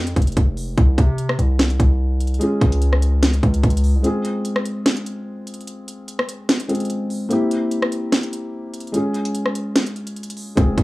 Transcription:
Already playing: F2
0.07 closed hi-hat
0.16 F1, kick, closed hi-hat
0.22 closed hi-hat
0.27 closed hi-hat
0.32 closed hi-hat
0.37 F1, kick, closed hi-hat
0.57 open hi-hat
0.78 C2, kick, closed hi-hat
0.98 C3, kick, closed hi-hat
1.18 closed hi-hat
1.29 cross-stick
1.39 C2, closed hi-hat
1.59 snare, closed hi-hat
1.70 closed hi-hat
1.80 C2, kick, closed hi-hat
2.21 closed hi-hat
2.27 closed hi-hat
2.34 closed hi-hat
2.39 G#3 C#4 F4 G#4, closed hi-hat
2.61 C#2, kick, closed hi-hat
2.72 closed hi-hat
2.82 closed hi-hat
2.93 cross-stick
3.02 closed hi-hat
3.23 snare, closed hi-hat
3.33 closed hi-hat
3.43 C#2, kick, closed hi-hat
3.54 closed hi-hat
3.63 C#2, kick, closed hi-hat
3.70 closed hi-hat
3.77 closed hi-hat
3.84 open hi-hat
3.95 C2
4.02 G#3 C4 F4 G#4, closed hi-hat
4.25 closed hi-hat
4.45 closed hi-hat
4.56 cross-stick
4.65 closed hi-hat
4.86 snare, closed hi-hat
4.97 closed hi-hat
5.06 closed hi-hat
5.47 closed hi-hat
5.54 closed hi-hat
5.61 closed hi-hat
5.67 closed hi-hat
5.88 closed hi-hat
6.08 closed hi-hat
6.19 cross-stick
6.29 closed hi-hat
6.49 snare, closed hi-hat
6.60 closed hi-hat
6.68 G#3 C4 F4 G#4, closed hi-hat
6.75 closed hi-hat
6.80 closed hi-hat
6.85 closed hi-hat
6.90 closed hi-hat
7.10 open hi-hat
7.29 A#3 C4 E4 G4, closed hi-hat
7.51 closed hi-hat
7.71 closed hi-hat
7.82 cross-stick
7.92 closed hi-hat
8.12 snare, closed hi-hat
8.23 closed hi-hat
8.33 closed hi-hat
8.74 closed hi-hat
8.80 closed hi-hat
8.87 closed hi-hat
8.92 G#3 C#4 F4 G#4, closed hi-hat
9.14 closed hi-hat
9.25 closed hi-hat
9.35 closed hi-hat
9.46 cross-stick
9.55 closed hi-hat
9.76 snare, closed hi-hat
9.86 closed hi-hat
9.96 closed hi-hat
10.07 closed hi-hat
10.16 closed hi-hat
10.23 closed hi-hat
10.30 closed hi-hat
10.37 open hi-hat
10.55 F1 G#3 C4 F4 G#4, kick, closed hi-hat
10.78 F1, kick, closed hi-hat

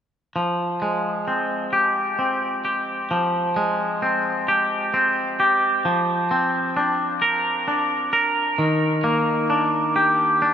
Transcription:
0.36 F3
0.82 G#3
1.28 C4
1.73 G4
2.19 C4
2.65 G4
3.11 F3
3.56 G#3
4.02 C4
4.48 G4
4.94 C4
5.40 G4
5.85 F3
6.31 C4
6.77 D4
7.22 A#4
7.68 D4
8.13 A#4
8.58 D#3
9.04 A#3
9.50 D4
9.96 G4
10.42 D4

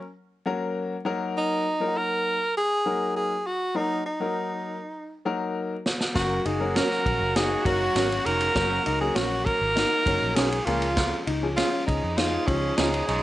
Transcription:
Already playing: C#4
0.46 F#3 A#3 C#4 F#4 A#4
1.05 F#3 A#3 D#4 F#4 A#4
1.38 D#4
1.80 F#3 A#3 D#4 F4 A#4
1.88 F#4
1.98 A#4
2.57 G#4
2.86 F#3 A#3 D#4 F#4 A#4
3.16 G#4
3.47 F#4
3.75 F#3 A#3 D#4 F#4 A#4
4.06 D#4
4.20 F#3 A#3 D#4 F#4 A#4
5.25 F#3 A#3 D#4 F#4 A#4
5.86 snare
6.00 snare
6.14 F#1 F#2 C#3 F#3 A#3 C#4 F#4 A#4, kick, snare, ride
6.46 F#1 D#4 G#4, ride
6.60 F#3 A#3 C#4 F#4 A#4
6.76 C#4 F#4 A#4, snare, ride
6.91 snare
7.06 A#1, kick, ride
7.21 F#1
7.36 D#4 G#4, snare, ride
7.65 F#1 F#3 A#3 C#4 F#4 A#4, kick, ride
7.95 G#1 C#4 F#4 A#4, snare, ride
8.12 ride
8.26 F1 G#2 A#4, ride
8.41 ride
8.55 F#1 F#2 F#3 A#3 C#4 F#4 A#4, kick, snare, ride
8.86 C#2 D#4, ride
9.01 F#3 A#3 C#4 F#4 G#4 A#4
9.15 A#1 C#4 F#4 A#4, snare, ride
9.46 A#4, kick, ride
9.61 G#1
9.76 D#4, snare, ride
10.06 F#1 F#3 A#3 C#4 F#4 A#4, kick, ride
10.22 A#1
10.36 B1 G#2 C#4 F#4 G#4 A#4, snare, ride
10.52 ride
10.65 C#2 A#2 F3 G#3 A#3 C#4 F4 G#4, ride
10.82 ride
10.97 F2, kick, snare, ride
11.27 C#2 D#4, ride
11.42 F3 G#3 C#4 F4 G#4
11.57 C#4 F4 G#4, snare, ride
11.87 C#2 F3 C#4 D#4 G#4, kick, ride
12.03 F2
12.17 D#4 F4, snare, ride
12.47 C#2 F3 G#3 C#4 F4 G4, kick, ride
12.55 G#4
12.77 C#2 C#4 D#4 F4 G#4, snare, ride
12.94 ride
13.08 B1 G#2 D#4, ride

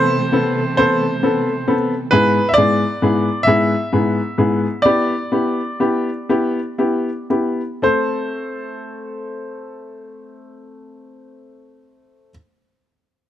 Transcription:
Already playing: C3 E3 A3 B3 C4 A4 C5
0.32 B3 C4 A4
0.77 B3 C4 A4 C5
1.23 B3 C4 A4
1.68 B3 C4 A4
2.11 G#2 B3 E4 G#4 B4
2.49 E5
2.54 G#2 B3 E4 D5
2.58 G#4
3.02 G#2 B3 E4 G#4
3.43 G#2 B3 E5
3.47 E4 G#4
3.93 G#2 B3 E4 G#4
4.38 G#2 B3 E4 G#4
4.82 B3 E4 G4 D5
5.32 B3 E4 G4
5.80 B3 E4 G4
6.29 B3 E4 G4
6.78 B3 E4 G4
7.30 B3 E4 G4
7.82 A3 C4 A4 C5

